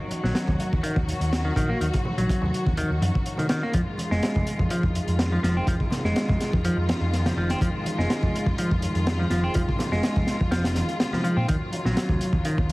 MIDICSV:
0, 0, Header, 1, 6, 480
1, 0, Start_track
1, 0, Tempo, 483871
1, 1790, Time_signature, 4, 2, 24, 8
1, 12619, End_track
2, 0, Start_track
2, 0, Title_t, "String section"
2, 0, Program_c, 0, 48
2, 0, Note_on_c, 0, 51, 82
2, 0, Note_on_c, 0, 54, 73
2, 0, Note_on_c, 0, 66, 91
2, 3668, Note_off_c, 0, 51, 0
2, 3671, Note_off_c, 0, 54, 0
2, 3671, Note_off_c, 0, 66, 0
2, 3710, Note_on_c, 0, 51, 83
2, 3711, Note_on_c, 0, 56, 74
2, 3711, Note_on_c, 0, 65, 93
2, 11350, Note_off_c, 0, 56, 0
2, 11390, Note_on_c, 0, 54, 74
2, 12619, Note_off_c, 0, 51, 0
2, 12619, Note_off_c, 0, 54, 0
2, 12619, Note_off_c, 0, 65, 0
2, 12619, End_track
3, 0, Start_track
3, 0, Title_t, "Clean electric guitar"
3, 0, Program_c, 1, 27
3, 233, Note_on_c, 1, 54, 76
3, 702, Note_off_c, 1, 54, 0
3, 826, Note_on_c, 1, 51, 82
3, 949, Note_off_c, 1, 51, 0
3, 1437, Note_on_c, 1, 51, 74
3, 1538, Note_off_c, 1, 51, 0
3, 1551, Note_on_c, 1, 51, 94
3, 1672, Note_off_c, 1, 51, 0
3, 1678, Note_on_c, 1, 58, 78
3, 1768, Note_off_c, 1, 58, 0
3, 1793, Note_on_c, 1, 51, 80
3, 1853, Note_off_c, 1, 51, 0
3, 2161, Note_on_c, 1, 54, 73
3, 2626, Note_off_c, 1, 54, 0
3, 2753, Note_on_c, 1, 51, 81
3, 2873, Note_off_c, 1, 51, 0
3, 3362, Note_on_c, 1, 51, 73
3, 3460, Note_off_c, 1, 51, 0
3, 3471, Note_on_c, 1, 51, 97
3, 3592, Note_off_c, 1, 51, 0
3, 3602, Note_on_c, 1, 58, 78
3, 3690, Note_off_c, 1, 58, 0
3, 3710, Note_on_c, 1, 53, 79
3, 3771, Note_off_c, 1, 53, 0
3, 4079, Note_on_c, 1, 56, 73
3, 4546, Note_off_c, 1, 56, 0
3, 4672, Note_on_c, 1, 53, 80
3, 4792, Note_off_c, 1, 53, 0
3, 5282, Note_on_c, 1, 53, 71
3, 5377, Note_off_c, 1, 53, 0
3, 5389, Note_on_c, 1, 53, 92
3, 5511, Note_off_c, 1, 53, 0
3, 5523, Note_on_c, 1, 60, 76
3, 5611, Note_off_c, 1, 60, 0
3, 5633, Note_on_c, 1, 53, 81
3, 5693, Note_off_c, 1, 53, 0
3, 6001, Note_on_c, 1, 56, 74
3, 6466, Note_off_c, 1, 56, 0
3, 6595, Note_on_c, 1, 53, 83
3, 6714, Note_off_c, 1, 53, 0
3, 7202, Note_on_c, 1, 53, 71
3, 7300, Note_off_c, 1, 53, 0
3, 7318, Note_on_c, 1, 53, 95
3, 7435, Note_off_c, 1, 53, 0
3, 7446, Note_on_c, 1, 60, 78
3, 7532, Note_off_c, 1, 60, 0
3, 7556, Note_on_c, 1, 53, 81
3, 7615, Note_off_c, 1, 53, 0
3, 7921, Note_on_c, 1, 56, 77
3, 8386, Note_off_c, 1, 56, 0
3, 8517, Note_on_c, 1, 53, 81
3, 8635, Note_off_c, 1, 53, 0
3, 9120, Note_on_c, 1, 53, 71
3, 9219, Note_off_c, 1, 53, 0
3, 9233, Note_on_c, 1, 53, 97
3, 9353, Note_off_c, 1, 53, 0
3, 9361, Note_on_c, 1, 60, 78
3, 9449, Note_off_c, 1, 60, 0
3, 9473, Note_on_c, 1, 53, 82
3, 9533, Note_off_c, 1, 53, 0
3, 9841, Note_on_c, 1, 56, 79
3, 10306, Note_off_c, 1, 56, 0
3, 10429, Note_on_c, 1, 53, 84
3, 10551, Note_off_c, 1, 53, 0
3, 11041, Note_on_c, 1, 53, 70
3, 11137, Note_off_c, 1, 53, 0
3, 11148, Note_on_c, 1, 53, 97
3, 11271, Note_off_c, 1, 53, 0
3, 11275, Note_on_c, 1, 60, 76
3, 11367, Note_off_c, 1, 60, 0
3, 11391, Note_on_c, 1, 51, 79
3, 11452, Note_off_c, 1, 51, 0
3, 11760, Note_on_c, 1, 54, 76
3, 12226, Note_off_c, 1, 54, 0
3, 12354, Note_on_c, 1, 51, 84
3, 12473, Note_off_c, 1, 51, 0
3, 12619, End_track
4, 0, Start_track
4, 0, Title_t, "Picked electric bass"
4, 0, Program_c, 2, 34
4, 234, Note_on_c, 2, 34, 85
4, 307, Note_off_c, 2, 34, 0
4, 477, Note_on_c, 2, 39, 102
4, 548, Note_off_c, 2, 39, 0
4, 723, Note_on_c, 2, 39, 83
4, 825, Note_off_c, 2, 39, 0
4, 955, Note_on_c, 2, 39, 85
4, 1102, Note_off_c, 2, 39, 0
4, 1196, Note_on_c, 2, 39, 90
4, 1483, Note_off_c, 2, 39, 0
4, 1551, Note_on_c, 2, 34, 93
4, 1708, Note_off_c, 2, 34, 0
4, 1791, Note_on_c, 2, 39, 90
4, 1871, Note_off_c, 2, 39, 0
4, 2156, Note_on_c, 2, 34, 81
4, 2228, Note_off_c, 2, 34, 0
4, 2398, Note_on_c, 2, 39, 100
4, 2468, Note_off_c, 2, 39, 0
4, 2645, Note_on_c, 2, 39, 77
4, 2787, Note_off_c, 2, 39, 0
4, 2880, Note_on_c, 2, 39, 88
4, 2983, Note_off_c, 2, 39, 0
4, 2989, Note_on_c, 2, 42, 93
4, 3070, Note_off_c, 2, 42, 0
4, 3712, Note_on_c, 2, 41, 91
4, 3792, Note_off_c, 2, 41, 0
4, 4077, Note_on_c, 2, 29, 82
4, 4148, Note_off_c, 2, 29, 0
4, 4323, Note_on_c, 2, 41, 101
4, 4391, Note_off_c, 2, 41, 0
4, 4556, Note_on_c, 2, 41, 82
4, 4662, Note_off_c, 2, 41, 0
4, 4795, Note_on_c, 2, 41, 90
4, 4942, Note_off_c, 2, 41, 0
4, 5035, Note_on_c, 2, 41, 88
4, 5322, Note_off_c, 2, 41, 0
4, 5389, Note_on_c, 2, 29, 97
4, 5547, Note_off_c, 2, 29, 0
4, 5627, Note_on_c, 2, 41, 89
4, 5709, Note_off_c, 2, 41, 0
4, 5993, Note_on_c, 2, 29, 84
4, 6066, Note_off_c, 2, 29, 0
4, 6243, Note_on_c, 2, 41, 105
4, 6311, Note_off_c, 2, 41, 0
4, 6483, Note_on_c, 2, 41, 81
4, 6626, Note_off_c, 2, 41, 0
4, 6715, Note_on_c, 2, 41, 87
4, 6862, Note_off_c, 2, 41, 0
4, 6954, Note_on_c, 2, 41, 89
4, 7242, Note_off_c, 2, 41, 0
4, 7306, Note_on_c, 2, 29, 101
4, 7465, Note_off_c, 2, 29, 0
4, 7552, Note_on_c, 2, 41, 93
4, 7631, Note_off_c, 2, 41, 0
4, 7916, Note_on_c, 2, 29, 82
4, 7988, Note_off_c, 2, 29, 0
4, 8163, Note_on_c, 2, 41, 104
4, 8231, Note_off_c, 2, 41, 0
4, 8397, Note_on_c, 2, 41, 83
4, 8498, Note_off_c, 2, 41, 0
4, 8644, Note_on_c, 2, 41, 88
4, 8786, Note_off_c, 2, 41, 0
4, 8874, Note_on_c, 2, 41, 91
4, 9162, Note_off_c, 2, 41, 0
4, 9229, Note_on_c, 2, 29, 98
4, 9387, Note_off_c, 2, 29, 0
4, 9479, Note_on_c, 2, 41, 91
4, 9555, Note_off_c, 2, 41, 0
4, 9837, Note_on_c, 2, 29, 87
4, 9908, Note_off_c, 2, 29, 0
4, 10083, Note_on_c, 2, 41, 103
4, 10151, Note_off_c, 2, 41, 0
4, 10326, Note_on_c, 2, 41, 83
4, 10423, Note_off_c, 2, 41, 0
4, 10429, Note_on_c, 2, 29, 87
4, 10722, Note_off_c, 2, 29, 0
4, 11276, Note_on_c, 2, 46, 82
4, 11347, Note_off_c, 2, 46, 0
4, 11401, Note_on_c, 2, 39, 93
4, 11476, Note_off_c, 2, 39, 0
4, 11758, Note_on_c, 2, 34, 85
4, 11828, Note_off_c, 2, 34, 0
4, 11994, Note_on_c, 2, 39, 99
4, 12066, Note_off_c, 2, 39, 0
4, 12231, Note_on_c, 2, 39, 83
4, 12346, Note_off_c, 2, 39, 0
4, 12481, Note_on_c, 2, 39, 91
4, 12619, Note_off_c, 2, 39, 0
4, 12619, End_track
5, 0, Start_track
5, 0, Title_t, "Muted picked electric bass strokes"
5, 831, Note_on_c, 9, 29, 41
5, 930, Note_off_c, 9, 29, 0
5, 12352, Note_on_c, 9, 29, 42
5, 12451, Note_off_c, 9, 29, 0
5, 12619, End_track
6, 0, Start_track
6, 0, Title_t, "Drums"
6, 107, Note_on_c, 9, 42, 67
6, 111, Note_on_c, 9, 63, 53
6, 206, Note_off_c, 9, 42, 0
6, 211, Note_off_c, 9, 63, 0
6, 242, Note_on_c, 9, 38, 37
6, 341, Note_off_c, 9, 38, 0
6, 347, Note_on_c, 9, 38, 117
6, 351, Note_on_c, 9, 42, 85
6, 446, Note_off_c, 9, 38, 0
6, 450, Note_off_c, 9, 42, 0
6, 470, Note_on_c, 9, 64, 80
6, 476, Note_on_c, 9, 36, 89
6, 569, Note_off_c, 9, 64, 0
6, 575, Note_off_c, 9, 36, 0
6, 592, Note_on_c, 9, 42, 71
6, 691, Note_off_c, 9, 42, 0
6, 721, Note_on_c, 9, 63, 66
6, 722, Note_on_c, 9, 36, 87
6, 820, Note_off_c, 9, 63, 0
6, 821, Note_off_c, 9, 36, 0
6, 829, Note_on_c, 9, 42, 93
6, 929, Note_off_c, 9, 42, 0
6, 955, Note_on_c, 9, 36, 101
6, 1054, Note_off_c, 9, 36, 0
6, 1077, Note_on_c, 9, 42, 63
6, 1176, Note_off_c, 9, 42, 0
6, 1202, Note_on_c, 9, 42, 44
6, 1301, Note_off_c, 9, 42, 0
6, 1316, Note_on_c, 9, 38, 113
6, 1318, Note_on_c, 9, 42, 77
6, 1415, Note_off_c, 9, 38, 0
6, 1417, Note_off_c, 9, 42, 0
6, 1550, Note_on_c, 9, 36, 101
6, 1558, Note_on_c, 9, 42, 83
6, 1649, Note_off_c, 9, 36, 0
6, 1657, Note_off_c, 9, 42, 0
6, 1798, Note_on_c, 9, 42, 68
6, 1897, Note_off_c, 9, 42, 0
6, 1920, Note_on_c, 9, 42, 72
6, 1927, Note_on_c, 9, 36, 102
6, 2019, Note_off_c, 9, 42, 0
6, 2026, Note_off_c, 9, 36, 0
6, 2027, Note_on_c, 9, 63, 64
6, 2034, Note_on_c, 9, 64, 84
6, 2126, Note_off_c, 9, 63, 0
6, 2133, Note_off_c, 9, 64, 0
6, 2158, Note_on_c, 9, 63, 55
6, 2162, Note_on_c, 9, 42, 56
6, 2257, Note_off_c, 9, 63, 0
6, 2262, Note_off_c, 9, 42, 0
6, 2276, Note_on_c, 9, 36, 110
6, 2281, Note_on_c, 9, 42, 77
6, 2375, Note_off_c, 9, 36, 0
6, 2380, Note_off_c, 9, 42, 0
6, 2395, Note_on_c, 9, 64, 80
6, 2495, Note_off_c, 9, 64, 0
6, 2521, Note_on_c, 9, 42, 60
6, 2620, Note_off_c, 9, 42, 0
6, 2636, Note_on_c, 9, 63, 67
6, 2643, Note_on_c, 9, 36, 96
6, 2735, Note_off_c, 9, 63, 0
6, 2743, Note_off_c, 9, 36, 0
6, 2751, Note_on_c, 9, 42, 79
6, 2850, Note_off_c, 9, 42, 0
6, 2993, Note_on_c, 9, 63, 84
6, 2998, Note_on_c, 9, 42, 71
6, 3092, Note_off_c, 9, 63, 0
6, 3098, Note_off_c, 9, 42, 0
6, 3128, Note_on_c, 9, 36, 87
6, 3227, Note_off_c, 9, 36, 0
6, 3232, Note_on_c, 9, 42, 55
6, 3331, Note_off_c, 9, 42, 0
6, 3348, Note_on_c, 9, 64, 80
6, 3363, Note_on_c, 9, 42, 37
6, 3447, Note_off_c, 9, 64, 0
6, 3463, Note_off_c, 9, 42, 0
6, 3464, Note_on_c, 9, 42, 87
6, 3466, Note_on_c, 9, 38, 113
6, 3563, Note_off_c, 9, 42, 0
6, 3565, Note_off_c, 9, 38, 0
6, 3704, Note_on_c, 9, 42, 84
6, 3710, Note_on_c, 9, 36, 103
6, 3804, Note_off_c, 9, 42, 0
6, 3809, Note_off_c, 9, 36, 0
6, 3946, Note_on_c, 9, 63, 62
6, 3957, Note_on_c, 9, 42, 66
6, 4045, Note_off_c, 9, 63, 0
6, 4056, Note_off_c, 9, 42, 0
6, 4080, Note_on_c, 9, 38, 40
6, 4179, Note_off_c, 9, 38, 0
6, 4191, Note_on_c, 9, 42, 87
6, 4197, Note_on_c, 9, 38, 124
6, 4290, Note_off_c, 9, 42, 0
6, 4296, Note_off_c, 9, 38, 0
6, 4320, Note_on_c, 9, 64, 87
6, 4324, Note_on_c, 9, 36, 88
6, 4419, Note_off_c, 9, 64, 0
6, 4423, Note_off_c, 9, 36, 0
6, 4431, Note_on_c, 9, 42, 63
6, 4530, Note_off_c, 9, 42, 0
6, 4553, Note_on_c, 9, 63, 65
6, 4557, Note_on_c, 9, 36, 85
6, 4652, Note_off_c, 9, 63, 0
6, 4656, Note_off_c, 9, 36, 0
6, 4666, Note_on_c, 9, 42, 91
6, 4765, Note_off_c, 9, 42, 0
6, 4795, Note_on_c, 9, 36, 86
6, 4894, Note_off_c, 9, 36, 0
6, 4913, Note_on_c, 9, 42, 65
6, 5012, Note_off_c, 9, 42, 0
6, 5037, Note_on_c, 9, 42, 42
6, 5136, Note_off_c, 9, 42, 0
6, 5149, Note_on_c, 9, 38, 118
6, 5152, Note_on_c, 9, 42, 91
6, 5248, Note_off_c, 9, 38, 0
6, 5251, Note_off_c, 9, 42, 0
6, 5393, Note_on_c, 9, 38, 46
6, 5399, Note_on_c, 9, 42, 70
6, 5492, Note_off_c, 9, 38, 0
6, 5498, Note_off_c, 9, 42, 0
6, 5626, Note_on_c, 9, 36, 110
6, 5629, Note_on_c, 9, 42, 79
6, 5725, Note_off_c, 9, 36, 0
6, 5728, Note_off_c, 9, 42, 0
6, 5754, Note_on_c, 9, 36, 88
6, 5853, Note_off_c, 9, 36, 0
6, 5859, Note_on_c, 9, 64, 85
6, 5863, Note_on_c, 9, 63, 56
6, 5868, Note_on_c, 9, 38, 43
6, 5875, Note_on_c, 9, 42, 61
6, 5958, Note_off_c, 9, 64, 0
6, 5962, Note_off_c, 9, 63, 0
6, 5967, Note_off_c, 9, 38, 0
6, 5974, Note_off_c, 9, 42, 0
6, 5992, Note_on_c, 9, 63, 59
6, 5997, Note_on_c, 9, 38, 39
6, 6091, Note_off_c, 9, 63, 0
6, 6097, Note_off_c, 9, 38, 0
6, 6109, Note_on_c, 9, 42, 85
6, 6114, Note_on_c, 9, 38, 112
6, 6208, Note_off_c, 9, 42, 0
6, 6213, Note_off_c, 9, 38, 0
6, 6235, Note_on_c, 9, 64, 84
6, 6244, Note_on_c, 9, 36, 93
6, 6334, Note_off_c, 9, 64, 0
6, 6343, Note_off_c, 9, 36, 0
6, 6353, Note_on_c, 9, 42, 69
6, 6357, Note_on_c, 9, 38, 47
6, 6452, Note_off_c, 9, 42, 0
6, 6456, Note_off_c, 9, 38, 0
6, 6476, Note_on_c, 9, 63, 60
6, 6482, Note_on_c, 9, 36, 96
6, 6575, Note_off_c, 9, 63, 0
6, 6581, Note_off_c, 9, 36, 0
6, 6593, Note_on_c, 9, 42, 80
6, 6692, Note_off_c, 9, 42, 0
6, 6833, Note_on_c, 9, 42, 73
6, 6833, Note_on_c, 9, 63, 100
6, 6840, Note_on_c, 9, 38, 96
6, 6932, Note_off_c, 9, 63, 0
6, 6933, Note_off_c, 9, 42, 0
6, 6939, Note_off_c, 9, 38, 0
6, 7073, Note_on_c, 9, 38, 37
6, 7079, Note_on_c, 9, 42, 60
6, 7173, Note_off_c, 9, 38, 0
6, 7178, Note_off_c, 9, 42, 0
6, 7201, Note_on_c, 9, 38, 94
6, 7201, Note_on_c, 9, 64, 85
6, 7204, Note_on_c, 9, 42, 76
6, 7300, Note_off_c, 9, 38, 0
6, 7300, Note_off_c, 9, 64, 0
6, 7304, Note_off_c, 9, 42, 0
6, 7437, Note_on_c, 9, 38, 41
6, 7439, Note_on_c, 9, 42, 62
6, 7536, Note_off_c, 9, 38, 0
6, 7538, Note_off_c, 9, 42, 0
6, 7551, Note_on_c, 9, 36, 107
6, 7555, Note_on_c, 9, 42, 83
6, 7650, Note_off_c, 9, 36, 0
6, 7654, Note_off_c, 9, 42, 0
6, 7793, Note_on_c, 9, 63, 61
6, 7797, Note_on_c, 9, 42, 70
6, 7892, Note_off_c, 9, 63, 0
6, 7896, Note_off_c, 9, 42, 0
6, 7931, Note_on_c, 9, 38, 37
6, 8030, Note_off_c, 9, 38, 0
6, 8036, Note_on_c, 9, 38, 125
6, 8036, Note_on_c, 9, 42, 88
6, 8135, Note_off_c, 9, 38, 0
6, 8135, Note_off_c, 9, 42, 0
6, 8156, Note_on_c, 9, 64, 74
6, 8162, Note_on_c, 9, 36, 87
6, 8256, Note_off_c, 9, 64, 0
6, 8261, Note_off_c, 9, 36, 0
6, 8288, Note_on_c, 9, 42, 73
6, 8387, Note_off_c, 9, 42, 0
6, 8391, Note_on_c, 9, 63, 74
6, 8397, Note_on_c, 9, 36, 97
6, 8490, Note_off_c, 9, 63, 0
6, 8497, Note_off_c, 9, 36, 0
6, 8514, Note_on_c, 9, 42, 97
6, 8613, Note_off_c, 9, 42, 0
6, 8645, Note_on_c, 9, 36, 96
6, 8744, Note_off_c, 9, 36, 0
6, 8753, Note_on_c, 9, 42, 69
6, 8852, Note_off_c, 9, 42, 0
6, 8879, Note_on_c, 9, 42, 43
6, 8978, Note_off_c, 9, 42, 0
6, 8993, Note_on_c, 9, 42, 75
6, 8998, Note_on_c, 9, 38, 118
6, 9092, Note_off_c, 9, 42, 0
6, 9097, Note_off_c, 9, 38, 0
6, 9227, Note_on_c, 9, 38, 49
6, 9230, Note_on_c, 9, 42, 64
6, 9326, Note_off_c, 9, 38, 0
6, 9330, Note_off_c, 9, 42, 0
6, 9464, Note_on_c, 9, 42, 80
6, 9478, Note_on_c, 9, 36, 112
6, 9563, Note_off_c, 9, 42, 0
6, 9577, Note_off_c, 9, 36, 0
6, 9609, Note_on_c, 9, 36, 87
6, 9707, Note_on_c, 9, 63, 57
6, 9708, Note_off_c, 9, 36, 0
6, 9708, Note_on_c, 9, 64, 78
6, 9713, Note_on_c, 9, 38, 42
6, 9720, Note_on_c, 9, 42, 63
6, 9806, Note_off_c, 9, 63, 0
6, 9808, Note_off_c, 9, 64, 0
6, 9813, Note_off_c, 9, 38, 0
6, 9820, Note_off_c, 9, 42, 0
6, 9839, Note_on_c, 9, 38, 43
6, 9839, Note_on_c, 9, 63, 64
6, 9939, Note_off_c, 9, 38, 0
6, 9939, Note_off_c, 9, 63, 0
6, 9952, Note_on_c, 9, 42, 93
6, 9954, Note_on_c, 9, 38, 127
6, 10051, Note_off_c, 9, 42, 0
6, 10053, Note_off_c, 9, 38, 0
6, 10077, Note_on_c, 9, 64, 73
6, 10082, Note_on_c, 9, 36, 102
6, 10176, Note_off_c, 9, 64, 0
6, 10181, Note_off_c, 9, 36, 0
6, 10187, Note_on_c, 9, 38, 54
6, 10194, Note_on_c, 9, 42, 64
6, 10286, Note_off_c, 9, 38, 0
6, 10293, Note_off_c, 9, 42, 0
6, 10319, Note_on_c, 9, 63, 67
6, 10325, Note_on_c, 9, 36, 85
6, 10418, Note_off_c, 9, 63, 0
6, 10424, Note_off_c, 9, 36, 0
6, 10433, Note_on_c, 9, 42, 73
6, 10434, Note_on_c, 9, 38, 105
6, 10532, Note_off_c, 9, 42, 0
6, 10533, Note_off_c, 9, 38, 0
6, 10559, Note_on_c, 9, 38, 107
6, 10565, Note_on_c, 9, 42, 77
6, 10658, Note_off_c, 9, 38, 0
6, 10664, Note_off_c, 9, 42, 0
6, 10666, Note_on_c, 9, 38, 47
6, 10672, Note_on_c, 9, 42, 66
6, 10673, Note_on_c, 9, 63, 91
6, 10766, Note_off_c, 9, 38, 0
6, 10771, Note_off_c, 9, 42, 0
6, 10772, Note_off_c, 9, 63, 0
6, 10799, Note_on_c, 9, 42, 46
6, 10898, Note_off_c, 9, 42, 0
6, 10911, Note_on_c, 9, 38, 120
6, 10913, Note_on_c, 9, 42, 84
6, 11010, Note_off_c, 9, 38, 0
6, 11012, Note_off_c, 9, 42, 0
6, 11037, Note_on_c, 9, 64, 78
6, 11041, Note_on_c, 9, 38, 57
6, 11136, Note_off_c, 9, 64, 0
6, 11140, Note_off_c, 9, 38, 0
6, 11154, Note_on_c, 9, 42, 67
6, 11253, Note_off_c, 9, 42, 0
6, 11393, Note_on_c, 9, 42, 92
6, 11400, Note_on_c, 9, 36, 103
6, 11492, Note_off_c, 9, 42, 0
6, 11499, Note_off_c, 9, 36, 0
6, 11631, Note_on_c, 9, 63, 54
6, 11632, Note_on_c, 9, 42, 66
6, 11730, Note_off_c, 9, 63, 0
6, 11731, Note_off_c, 9, 42, 0
6, 11759, Note_on_c, 9, 38, 41
6, 11858, Note_off_c, 9, 38, 0
6, 11873, Note_on_c, 9, 42, 95
6, 11874, Note_on_c, 9, 38, 120
6, 11972, Note_off_c, 9, 42, 0
6, 11973, Note_off_c, 9, 38, 0
6, 11993, Note_on_c, 9, 36, 94
6, 11995, Note_on_c, 9, 64, 76
6, 12092, Note_off_c, 9, 36, 0
6, 12094, Note_off_c, 9, 64, 0
6, 12112, Note_on_c, 9, 42, 68
6, 12211, Note_off_c, 9, 42, 0
6, 12230, Note_on_c, 9, 36, 88
6, 12243, Note_on_c, 9, 63, 67
6, 12329, Note_off_c, 9, 36, 0
6, 12343, Note_off_c, 9, 63, 0
6, 12348, Note_on_c, 9, 42, 81
6, 12447, Note_off_c, 9, 42, 0
6, 12481, Note_on_c, 9, 36, 93
6, 12580, Note_off_c, 9, 36, 0
6, 12619, End_track
0, 0, End_of_file